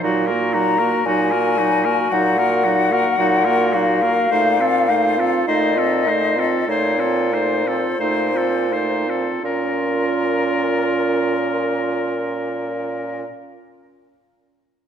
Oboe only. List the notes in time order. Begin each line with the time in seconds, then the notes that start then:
0.04 F#4
0.27 A#4
0.54 F#4
0.79 A#4
1.06 F#4
1.31 A#4
1.58 F#4
1.85 A#4
2.10 F#4
2.38 A#4
2.64 F#4
2.92 A#4
3.18 F#4
3.45 A#4
3.73 F#4
4.02 A#4
4.31 C5
4.61 A4
4.90 C5
5.20 A4
5.48 C5
5.78 A4
6.08 C5
6.39 A4
6.70 C5
7.00 A4
7.34 C5
7.68 A4
8.00 C5
8.37 A4
8.73 C5
9.10 A4
9.45 A#4